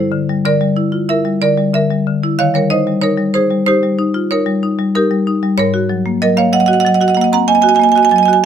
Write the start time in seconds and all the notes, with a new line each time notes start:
Already playing: G2 E4 A4 C5
0.12 D3
0.29 G3
0.45 D3 A#4 D5
0.61 G3
0.77 E4
0.92 F4
1.09 E4 A#4 E5
1.25 G3
1.42 D3 A#4 D5
1.57 G3
1.74 D3 A#4 E5
1.91 G3
2.07 D3
2.23 E4
2.39 D#3 C#5 F5
2.54 G3 A#4 C#5
2.70 D#4 C5 D#5
2.87 G3
3.02 D#4 A#4 C#5
3.18 G3
3.34 D#4 G#4 C5
3.50 G3
3.66 D#4 G4 C5
3.83 G3
3.99 D#4
4.14 F4
4.31 D#4 A#4 C#5
4.46 G3
4.63 D#4
4.79 G3
4.95 D#4 G4 A#4
5.11 G3
5.27 D#4
5.43 G3
5.58 G#2 A#4 C#5
5.74 F#4
5.89 F#3
6.06 A#3
6.22 F#3 A#4 D#5
6.37 A#3 C#5 F5
6.53 F#3 D#5 F#5
6.60 D#5 F#5
6.66 F#4 D#5 F#5
6.73 D#5 F#5
6.80 D#5 F#5
6.85 F#3 D#5 F#5
6.94 D#5 F#5
7.01 F#4 D#5 F#5
7.08 D#5 F#5
7.15 A#3 D#5 F#5
7.21 D#5 F#5
7.33 C4 F#5 A#5
7.48 A#3 D#5 G#5
7.55 D#5 G#5
7.62 F#4 D#5 G#5
7.69 D#5 G#5
7.75 D#5 G#5
7.80 A#3 D#5 G#5
7.89 D#5 G#5
7.95 F#4 D#5 G#5
8.03 D#5 G#5
8.10 F#3 D#5 G#5
8.16 D#5 G#5
8.23 D#5 G#5
8.28 F#4 D#5
8.33 G#5